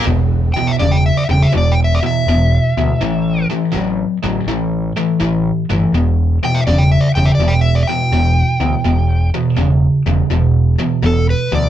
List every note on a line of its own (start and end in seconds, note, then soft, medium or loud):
0.06 0.51 E1 medium
0.06 0.51 E2 medium
0.06 0.51 B2 medium
0.54 0.78 E2 medium
0.54 0.78 B2 medium
0.54 0.70 G5 medium
0.67 0.77 E5 medium
0.79 1.10 E1 medium
0.79 1.24 E2 medium
0.79 1.24 C#3 medium
0.79 0.96 D5 medium
0.91 1.02 G5 medium
1.06 1.29 E5 medium
1.17 1.23 D5 medium
1.29 1.44 E1 medium
1.29 1.51 E2 medium
1.29 1.51 C#3 medium
1.29 1.46 G5 medium
1.43 1.52 E5 medium
1.53 1.99 E1 medium
1.53 1.98 E2 medium
1.53 1.98 B2 medium
1.58 1.72 D5 medium
1.72 1.79 G5 medium
1.84 2.05 E5 medium
1.95 1.98 D5 medium
2.03 2.25 E2 medium
2.03 2.25 B2 medium
2.03 3.47 E5 medium
2.26 2.57 E1 medium
2.26 2.72 E2 medium
2.26 2.72 B2 medium
2.77 2.92 D2 medium
2.77 2.98 E2 medium
2.77 2.99 B2 medium
3.01 3.46 A1 medium
3.01 3.45 A2 medium
3.01 3.45 E3 medium
3.51 3.72 A2 medium
3.51 3.72 E3 medium
3.73 4.04 A1 medium
3.73 4.18 A2 medium
3.73 4.18 F#3 loud
4.23 4.38 A1 medium
4.23 4.45 A2 medium
4.23 4.45 F#3 medium
4.47 4.92 A1 medium
4.47 4.92 A2 medium
4.47 4.92 E3 medium
4.97 5.18 A2 medium
4.97 5.18 E3 medium
5.20 5.51 A1 medium
5.20 5.64 A2 medium
5.20 5.65 E3 medium
5.70 5.84 G1 medium
5.70 5.91 A2 medium
5.70 5.91 E3 medium
5.93 6.38 E1 medium
5.93 6.38 E2 medium
5.93 6.38 B2 medium
6.43 6.64 E2 medium
6.43 6.64 B2 medium
6.43 6.59 G5 medium
6.55 6.64 E5 medium
6.67 6.97 E1 medium
6.67 7.11 E2 medium
6.67 7.11 C#3 loud
6.67 6.82 D5 medium
6.78 6.88 G5 medium
6.92 7.15 E5 medium
7.01 7.07 D5 medium
7.15 7.30 E1 loud
7.15 7.37 E2 medium
7.15 7.38 C#3 medium
7.15 7.31 G5 medium
7.26 7.34 E5 medium
7.35 7.83 E1 loud
7.35 7.53 D5 medium
7.40 7.84 E2 medium
7.40 7.84 B2 medium
7.48 7.59 G5 medium
7.61 7.86 E5 medium
7.75 7.81 D5 medium
7.87 8.10 E2 medium
7.87 8.10 B2 medium
7.87 9.29 G5 medium
8.12 8.42 E1 medium
8.12 8.56 E2 medium
8.12 8.56 B2 loud
8.60 8.75 D2 medium
8.60 8.82 E2 medium
8.60 8.83 B2 medium
8.85 9.29 E1 medium
8.85 9.29 E2 medium
8.85 9.29 B2 medium
9.34 9.55 E2 medium
9.34 9.56 B2 medium
9.57 9.87 E1 medium
9.57 10.01 E2 medium
9.57 10.02 C#3 medium
10.06 10.21 E1 medium
10.06 10.28 E2 medium
10.06 10.28 C#3 medium
10.30 10.75 E1 medium
10.30 10.74 E2 medium
10.30 10.75 B2 medium
10.79 11.00 E2 medium
10.79 11.01 B2 medium
11.03 11.33 E1 medium
11.03 11.47 E2 medium
11.03 11.47 B2 medium
11.03 11.28 A4 medium
11.30 11.52 B4 medium
11.52 11.67 D2 medium
11.52 11.69 E2 medium
11.52 11.69 B2 medium
11.52 11.69 D5 medium